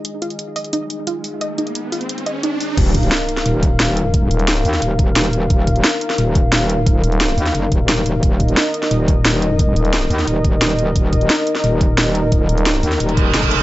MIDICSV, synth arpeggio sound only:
0, 0, Header, 1, 2, 480
1, 0, Start_track
1, 0, Tempo, 340909
1, 68, Time_signature, 4, 2, 24, 8
1, 19190, End_track
2, 0, Start_track
2, 0, Title_t, "Synth arpeggio sound"
2, 0, Program_c, 0, 84
2, 307, Note_on_c, 0, 65, 75
2, 404, Note_off_c, 0, 65, 0
2, 787, Note_on_c, 0, 75, 76
2, 884, Note_off_c, 0, 75, 0
2, 1028, Note_on_c, 0, 63, 82
2, 1086, Note_off_c, 0, 63, 0
2, 1509, Note_on_c, 0, 65, 76
2, 1605, Note_off_c, 0, 65, 0
2, 1988, Note_on_c, 0, 75, 82
2, 2085, Note_off_c, 0, 75, 0
2, 2228, Note_on_c, 0, 63, 75
2, 2286, Note_off_c, 0, 63, 0
2, 2708, Note_on_c, 0, 65, 74
2, 2804, Note_off_c, 0, 65, 0
2, 3188, Note_on_c, 0, 75, 76
2, 3284, Note_off_c, 0, 75, 0
2, 3427, Note_on_c, 0, 63, 77
2, 3485, Note_off_c, 0, 63, 0
2, 19190, End_track
0, 0, End_of_file